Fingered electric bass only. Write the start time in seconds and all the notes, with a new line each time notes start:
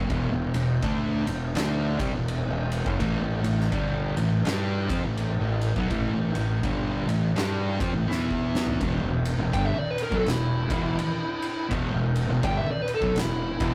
0.10 E1
0.32 E1
0.54 E1
0.82 D2
1.27 E1
1.54 D2
1.99 C2
2.13 E1
2.50 E1
2.86 F#1
3.00 A1
3.21 A1
3.44 A1
3.72 G1
4.17 A1
4.46 G2
4.90 F2
5.04 A1
5.40 A1
5.76 B1
5.90 A1
6.13 A1
6.35 A1
6.63 G1
7.07 A1
7.36 G2
7.80 F2
7.94 A1
8.08 E2
8.81 E1
9.03 E1
9.39 E1
9.54 G1
9.75 muted fingered electric bass stroke
10.12 B1
10.26 E1
10.70 E1
11.71 E1
11.93 E1
12.29 E1
12.43 G1
12.65 muted fingered electric bass stroke
13.02 B1
13.16 E1
13.60 E1